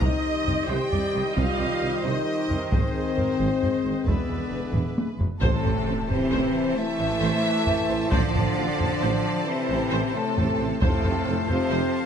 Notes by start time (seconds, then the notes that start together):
0.00 C2 C3 D#3 G3 C4 D#4 G4 C5 D#5, taiko
0.46 C2 C3, taiko low
0.67 C2 C3 G4 C5 G5
0.91 C2 C3 D5, taiko low
1.13 C2 C3 D#5
1.35 C2 C3 F4 F5, taiko
1.58 C2 C3
1.81 C2 C3
2.03 C2 C3 D#4 C5 D#5
2.27 G4
2.49 C2 C3 A#4, taiko low
2.70 G#1 G#2 G#3 C4 G#4 C5, taiko
2.95 G#4
3.16 G#1 G#2 A#4, taiko low
3.39 G#1 G#2 C5
3.62 G#1 G#2, taiko low
3.84 G#1 G#2
4.06 E1 E2 D3 B3 E4 G#4 B4 D5 E5, taiko
4.29 E1 E2
4.50 E1 E2
4.72 E1 E2, taiko low-mid
4.98 taiko high
5.19 E1 E2, taiko low
5.40 A1 A2 C3 A3 C4 A4 C5 A5, taiko, sub drop
5.64 A1 C5, taiko low
5.86 A1 A4 C5
6.09 A1 C3 E3 C4 C5, taiko low
6.31 A1 C5
6.75 E3 A3 E4 E5
6.99 A1 C5
7.20 A1 C5
7.67 A1 A4 C5, taiko low
7.89 A1 C5
8.11 A1 D3 F3 D4 C5 D5, taiko
8.34 A1 C5, taiko low
8.57 A1 A4 C5
8.79 A1 C5, taiko low
9.01 A1 C5
9.47 C3 E3 C4 C5
9.68 A1 C5
9.90 A1 C5
10.13 A2 C3 A3 A4
10.36 A1 A4 C5, taiko low
10.59 A1 C5
10.81 F1 A2 C3 A3 C4 A4 C5 F5 A5, taiko
11.03 F1 C5, taiko low
11.25 F1 A4 C5
11.47 F1 C3 F3 C4 C5, taiko low
11.70 F1 C5